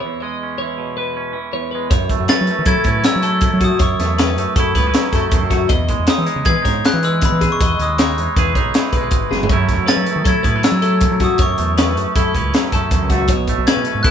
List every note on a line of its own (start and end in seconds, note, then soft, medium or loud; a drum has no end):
0.00 0.59 E3 medium
0.00 0.97 E4 medium
0.00 0.20 C#5 medium
0.06 1.52 E2 medium
0.20 1.73 G#3 medium
0.20 0.58 D#5 medium
0.43 1.15 C#4 soft
0.58 1.32 E3 medium
0.58 0.96 C#5 medium
0.78 1.35 B2 medium
0.97 1.35 B4 medium
0.97 1.90 B4 medium
1.17 1.90 C#4 medium
1.33 3.03 E3 medium
1.53 1.91 E2 medium
1.53 1.71 C#5 medium
1.71 1.93 G#3 soft
1.71 1.90 B4 medium
1.90 2.07 F#2 medium
1.90 3.43 F#2 medium
1.90 2.28 C#5 medium
1.90 kick loud
1.90 closed hi-hat medium
2.09 2.50 A3 medium
2.09 kick medium
2.09 closed hi-hat medium
2.20 2.28 F#2 medium
2.28 2.84 C#4 medium
2.28 2.66 B4 medium
2.28 2.69 A6 loud
2.28 snare loud
2.28 closed hi-hat medium
2.41 2.48 F#3 medium
2.47 3.23 A3 medium
2.47 closed hi-hat medium
2.59 2.65 D#3 medium
2.66 2.75 F#3 loud
2.66 4.59 E4 medium
2.66 2.87 A4 medium
2.66 3.02 G#6 loud
2.66 kick loud
2.66 closed hi-hat medium
2.84 3.02 A2 medium
2.84 3.78 C#4 medium
2.84 3.23 B4 medium
2.84 kick medium
2.84 closed hi-hat medium
3.04 3.78 F#3 medium
3.04 3.64 E6 loud
3.04 snare loud
3.04 closed hi-hat medium
3.16 3.47 F#3 medium
3.23 3.62 A3 medium
3.23 3.62 A4 medium
3.23 closed hi-hat medium
3.41 3.79 F#2 medium
3.41 kick loud
3.41 closed hi-hat medium
3.53 3.69 F#3 medium
3.61 3.81 F#4 medium
3.61 3.83 D#6 medium
3.61 kick medium
3.61 closed hi-hat medium
3.66 3.81 A3 medium
3.79 5.32 F#2 medium
3.79 3.97 F#2 medium
3.79 4.18 C#5 medium
3.79 4.53 C#6 medium
3.79 kick loud
3.79 closed hi-hat loud
4.00 4.38 E2 medium
4.00 4.38 A3 medium
4.00 snare soft
4.00 closed hi-hat medium
4.18 4.76 C#4 medium
4.18 4.56 B4 medium
4.18 snare loud
4.18 closed hi-hat loud
4.38 4.46 F#2 medium
4.38 5.14 A3 medium
4.38 closed hi-hat medium
4.56 4.72 F#2 medium
4.56 6.45 E4 medium
4.56 4.75 A4 medium
4.56 kick loud
4.56 closed hi-hat medium
4.75 4.92 C#2 medium
4.75 4.87 B3 medium
4.75 5.12 B4 medium
4.75 kick medium
4.75 snare soft
4.75 closed hi-hat medium
4.87 5.71 C#4 medium
4.94 5.68 F#3 medium
4.94 snare loud
4.94 closed hi-hat medium
5.13 5.29 F#2 medium
5.13 5.52 A3 medium
5.13 5.51 A4 medium
5.13 kick medium
5.13 snare soft
5.13 closed hi-hat medium
5.31 5.40 E2 loud
5.31 5.69 F#2 medium
5.31 kick loud
5.31 closed hi-hat medium
5.43 5.67 F#2 loud
5.50 5.69 A3 medium
5.50 5.70 F#4 medium
5.50 kick medium
5.50 snare soft
5.50 closed hi-hat medium
5.69 5.86 E2 medium
5.69 7.20 E2 medium
5.69 6.08 D#5 medium
5.69 kick loud
5.69 closed hi-hat medium
5.88 6.26 G#3 medium
5.88 kick medium
5.88 closed hi-hat medium
5.99 6.07 E2 medium
6.07 6.62 D#4 soft
6.07 6.46 C#5 medium
6.07 6.48 D#6 medium
6.07 snare loud
6.07 closed hi-hat loud
6.18 6.26 E3 medium
6.26 7.02 G#3 medium
6.26 closed hi-hat medium
6.36 6.44 C#3 medium
6.45 6.55 E3 loud
6.45 7.57 G#4 medium
6.45 6.64 B4 medium
6.45 6.82 G#6 loud
6.45 kick loud
6.45 closed hi-hat medium
6.62 6.81 G#2 medium
6.62 7.56 D#4 medium
6.62 7.03 C#5 medium
6.62 kick medium
6.62 closed hi-hat medium
6.66 snare soft
6.85 7.05 F#6 loud
6.85 snare loud
6.85 closed hi-hat medium
6.93 7.26 E3 medium
7.03 7.40 G#3 medium
7.03 7.42 B4 medium
7.03 7.13 E6 medium
7.03 closed hi-hat medium
7.21 7.60 E2 medium
7.21 kick loud
7.21 snare soft
7.21 closed hi-hat loud
7.25 7.50 B5 medium
7.32 7.48 E3 medium
7.41 7.80 G#3 medium
7.41 7.60 G#4 medium
7.41 kick medium
7.41 snare soft
7.41 closed hi-hat medium
7.52 7.81 C#6 medium
7.61 7.77 E2 medium
7.61 7.98 D#5 medium
7.61 kick loud
7.61 closed hi-hat loud
7.79 8.19 D#2 medium
7.79 8.18 G#3 medium
7.79 8.53 D#6 medium
7.79 closed hi-hat medium
7.98 8.55 D#4 medium
7.98 8.37 C#5 medium
7.98 snare loud
7.98 closed hi-hat medium
8.18 8.27 E2 medium
8.18 8.94 G#3 medium
8.18 closed hi-hat medium
8.36 8.52 E2 medium
8.36 9.49 G#4 medium
8.36 8.55 B4 medium
8.36 kick loud
8.36 snare soft
8.36 closed hi-hat medium
8.55 8.71 B1 medium
8.55 9.49 D#4 medium
8.55 8.93 C#5 medium
8.55 kick medium
8.55 closed hi-hat medium
8.74 9.50 E3 medium
8.74 snare loud
8.74 closed hi-hat medium
8.92 9.10 B1 medium
8.92 9.31 B4 medium
8.92 kick medium
8.92 closed hi-hat medium
8.97 9.52 G#3 medium
9.11 9.29 G#1 medium
9.11 kick loud
9.11 closed hi-hat medium
9.31 9.48 F#1 medium
9.31 9.50 E2 medium
9.31 9.50 G#4 medium
9.31 snare medium
9.43 floor tom medium
9.49 9.66 F#2 loud
9.49 11.02 F#2 medium
9.49 10.64 F#3 medium
9.49 9.71 A3 medium
9.49 9.89 C#4 medium
9.49 10.29 E4 medium
9.49 9.86 C#5 medium
9.49 kick loud
9.49 closed hi-hat medium
9.69 10.11 A3 medium
9.69 kick medium
9.69 snare soft
9.69 closed hi-hat medium
9.78 9.86 F#2 medium
9.86 10.44 C#4 medium
9.86 10.24 B4 medium
9.86 10.23 A6 loud
9.86 snare loud
9.86 closed hi-hat medium
9.96 10.05 F#3 medium
10.06 closed hi-hat medium
10.11 10.81 A3 medium
10.16 10.24 D#3 medium
10.25 10.34 F#3 loud
10.25 10.43 A4 medium
10.25 10.66 G#6 loud
10.25 kick loud
10.25 closed hi-hat medium
10.29 12.15 E4 medium
10.43 10.61 A2 medium
10.43 10.56 B3 medium
10.43 10.82 B4 medium
10.43 kick medium
10.43 closed hi-hat medium
10.56 11.40 C#4 soft
10.63 12.19 F#3 medium
10.63 11.17 E6 medium
10.63 snare loud
10.63 closed hi-hat loud
10.71 11.04 F#3 medium
10.82 11.20 A3 medium
10.82 11.20 A4 medium
10.82 closed hi-hat medium
11.01 11.37 F#2 medium
11.01 kick loud
11.01 closed hi-hat medium
11.11 11.27 F#3 medium
11.20 11.58 A3 medium
11.20 11.40 F#4 medium
11.20 kick medium
11.20 snare soft
11.20 closed hi-hat medium
11.24 11.32 D#6 medium
11.38 12.91 F#2 medium
11.38 11.55 F#2 medium
11.38 11.77 C#5 medium
11.38 kick loud
11.38 closed hi-hat loud
11.42 12.13 C#6 medium
11.58 11.97 E2 medium
11.58 11.95 A3 medium
11.58 closed hi-hat medium
11.77 12.35 C#4 medium
11.77 12.16 B4 medium
11.77 snare loud
11.77 closed hi-hat medium
11.96 12.05 F#2 medium
11.96 12.74 A3 medium
11.96 closed hi-hat medium
12.16 12.32 F#2 medium
12.16 14.05 E4 medium
12.16 12.34 A4 medium
12.16 kick loud
12.16 closed hi-hat medium
12.34 12.51 C#2 medium
12.34 13.33 C#4 medium
12.34 12.72 B4 medium
12.34 kick medium
12.34 closed hi-hat medium
12.54 14.08 F#3 medium
12.54 snare loud
12.54 closed hi-hat medium
12.72 12.89 F#2 medium
12.72 13.11 A3 medium
12.72 13.11 A4 medium
12.72 kick medium
12.72 closed hi-hat medium
12.91 13.00 E2 medium
12.91 13.27 F#2 medium
12.91 kick loud
12.91 closed hi-hat medium
13.02 13.26 C#2 medium
13.10 13.33 A3 medium
13.10 13.29 F#4 medium
13.10 kick medium
13.10 snare soft
13.10 closed hi-hat medium
13.28 13.45 B1 medium
13.28 14.11 B2 medium
13.28 13.67 C#5 medium
13.28 kick loud
13.28 closed hi-hat loud
13.47 13.86 A3 medium
13.47 kick medium
13.47 closed hi-hat medium
13.58 13.66 B1 medium
13.67 14.11 C#4 medium
13.67 14.05 B4 medium
13.67 14.02 G#6 loud
13.67 snare loud
13.67 closed hi-hat loud
13.76 13.85 B2 medium
13.85 14.11 A3 medium
13.85 closed hi-hat medium
13.95 14.03 G#2 medium
14.03 14.11 B2 loud
14.03 14.11 E4 medium
14.03 14.11 A4 medium
14.03 14.11 F#6 loud
14.03 kick loud
14.03 closed hi-hat loud